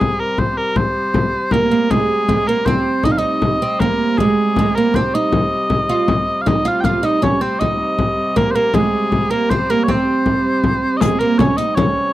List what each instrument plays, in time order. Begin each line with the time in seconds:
Already playing: hurdy-gurdy C3 G3, bagpipes G#4
0.01 frame drum
0.20 bagpipes A#4
0.38 bagpipes C5, frame drum
0.57 bagpipes A#4
0.76 bagpipes C5, frame drum
1.14 frame drum
1.34 frame drum
1.51 oud A#3, bagpipes A#4, frame drum
1.71 oud A#3
1.91 hurdy-gurdy C3 G3, oud G#3, bagpipes G#4, frame drum
2.10 frame drum
2.29 oud G#3, frame drum
2.47 oud A#3, bagpipes A#4
2.66 oud C4, bagpipes C5, frame drum
3.03 oud D#4, bagpipes D#5, frame drum
3.12 bagpipes F5
3.18 oud D#4, bagpipes D#5
3.23 frame drum
3.42 frame drum
3.62 oud C4
3.80 oud A#3, bagpipes A#4, frame drum
4.18 oud G#3, bagpipes G#4, frame drum
4.37 frame drum
4.56 oud G#3, frame drum
4.75 oud A#3, bagpipes A#4
4.94 oud C4, bagpipes C5, frame drum
5.14 oud D#4, bagpipes D#5
5.32 frame drum
5.52 frame drum
5.70 frame drum
5.89 oud F4, frame drum
6.08 frame drum
6.42 bagpipes F5
6.46 hurdy-gurdy C3 G3, oud D#4, bagpipes D#5, frame drum
6.65 oud F4, bagpipes F5, frame drum
6.81 bagpipes F5 G5, frame drum
6.85 oud F4
7.03 oud D#4, bagpipes D#5
7.22 oud C#4, bagpipes C#5, frame drum
7.41 oud C4, bagpipes C5
7.59 oud D#4, bagpipes D#5, frame drum
7.81 frame drum
7.99 frame drum
8.36 oud A#3, bagpipes A#4, frame drum
8.51 bagpipes C5
8.55 oud A#3, bagpipes A#4
8.74 oud G#3, bagpipes G#4, frame drum
8.94 frame drum
9.12 frame drum
9.31 oud A#3, bagpipes A#4
9.50 oud C4, bagpipes C5, frame drum
9.70 oud A#3, bagpipes A#4
9.83 bagpipes C#5
9.88 oud C4, bagpipes C5, frame drum
10.26 frame drum
10.64 frame drum
10.84 frame drum
10.97 hurdy-gurdy C3 G3, bagpipes G#4 D#5
11.01 oud G#3, riq, frame drum
11.19 oud A#3, bagpipes A#4
11.38 oud C#4, bagpipes C#5, frame drum
11.57 oud D#4, bagpipes D#5, riq
11.75 oud C#4, bagpipes C#5, frame drum
11.95 frame drum